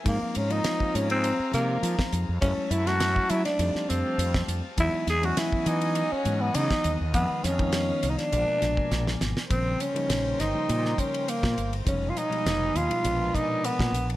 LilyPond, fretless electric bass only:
\new Staff \with { instrumentName = "Fretless electric bass" } { \clef bass \time 4/4 \key aes \mixolydian \tempo 4 = 102 aes,16 r16 aes,8 r8 aes,8. r16 c8 f16 r16 f,16 f,16 | ges,16 r16 ges,4 ges16 r16 f,16 r16 f,16 r16 f,8 f,16 r16 | e,16 r16 e,8 r8 e8. r16 gis,8 des16 r16 dis,16 dis,16 | f,16 r16 f,4 c,16 r16 bes,,16 r16 bes,,16 r16 bes,,8 aes,,16 r16 |
\key bes \dorian bes,,8 r8 bes,,8 g,,16 r16 bes,8 r8. bes,16 g,,8 | f,,8 r8 f,,8 ees,16 r16 bes,,8 r8. bes,16 bes,,8 | }